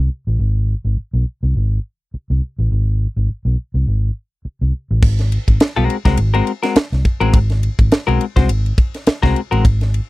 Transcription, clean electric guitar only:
5.76 G#3 C4 F#4 A#4
6.05 G#3 C4 F#4 A#4
6.34 G#3 C4 F#4 A#4
6.63 G#3 C4 F#4 A#4
7.20 G#3 C4 F#4 A#4
8.07 G#3 C4 F#4 A#4
8.36 G#3 C4 F#4 C5
9.23 G#3 C4 F#4 A#4
9.51 G#3 C4 F#4 A#4

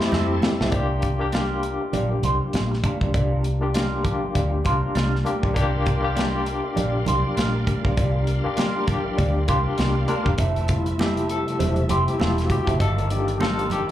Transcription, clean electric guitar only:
0.00 muted clean electric guitar stroke
0.12 C4 E4 A4
0.43 muted clean electric guitar stroke
0.61 C4 E4 A4
0.73 D4 F4 A#4
1.20 muted clean electric guitar stroke
1.33 D4 F4 A#4
1.64 muted clean electric guitar stroke
1.81 muted clean electric guitar stroke
1.93 D4 F4 A#4
2.12 muted clean electric guitar stroke
2.24 D4 F4 C5
2.41 muted clean electric guitar stroke
2.54 muted clean electric guitar stroke
2.71 muted clean electric guitar stroke
2.85 D4 F4 A#4
3.02 D4 F4 A#4
3.15 D4 F4 A#4
3.62 muted clean electric guitar stroke
3.75 D4 F4 A#4
4.05 muted clean electric guitar stroke
4.23 muted clean electric guitar stroke
4.35 D4 F4 A#4
4.53 muted clean electric guitar stroke
4.65 D4 F4 C5
4.83 muted clean electric guitar stroke
4.95 D4 F4 A#4
5.26 muted clean electric guitar stroke
5.43 D4 F4 A#4
5.56 D4 F4 A#4
6.04 muted clean electric guitar stroke
6.16 C#4 E4 A4
6.28 D4 F4 A#4
6.46 muted clean electric guitar stroke
6.63 muted clean electric guitar stroke
6.76 D4 F4 A#4
6.94 muted clean electric guitar stroke
7.07 D4 F4 C5
7.24 muted clean electric guitar stroke
7.37 D4 F4 A#4
7.67 muted clean electric guitar stroke
7.85 D4 F4 A#4
7.97 D4 F4 A#4
8.45 muted clean electric guitar stroke
8.57 D4 F4 A#4
8.87 muted clean electric guitar stroke
9.05 muted clean electric guitar stroke
9.18 D4 F4 A#4
9.35 muted clean electric guitar stroke
9.48 D4 F4 C5
9.65 muted clean electric guitar stroke
9.78 muted clean electric guitar stroke
9.95 muted clean electric guitar stroke
10.08 D4 F4 A#4
10.26 muted clean electric guitar stroke
10.38 C4 E4 A4
10.86 muted clean electric guitar stroke
11.00 C4 E4 A4
11.29 muted clean electric guitar stroke
11.46 muted clean electric guitar stroke
11.59 C4 E4 A4
11.77 muted clean electric guitar stroke
11.89 C4 E4 C5
12.06 muted clean electric guitar stroke
12.19 C4 E4 A4
12.49 muted clean electric guitar stroke
12.67 C4 E4 A4
12.79 D#4 F4 A#4
13.27 muted clean electric guitar stroke
13.40 D#4 F4 A#4
13.69 muted clean electric guitar stroke
13.87 muted clean electric guitar stroke

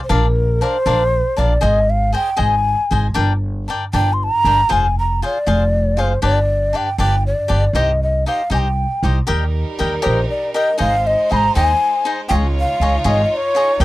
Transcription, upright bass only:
0.10 A#1
0.86 A#1
1.38 A#1
1.63 G#1
2.39 G#1
2.91 G#1
3.16 G1
3.94 G1
4.44 G1
4.71 F1
5.47 F1
5.98 F#1
6.23 G1
6.98 G1
7.50 G1
7.73 C2
8.51 C2
9.03 C2
9.29 D#2
9.80 D#2
10.06 A#1
10.80 G#1
11.32 G#1
11.56 D#2
12.31 C#2
12.80 C#2
13.05 G#1
13.80 D#2

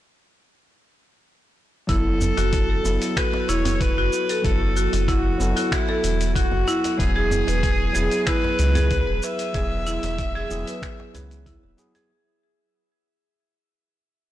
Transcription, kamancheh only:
1.89 A4
3.17 B4
3.49 C#5
3.81 B4
4.44 A4
5.08 F#4
5.73 E4
6.36 F#4
7.00 G#4
8.28 B4
9.23 E5

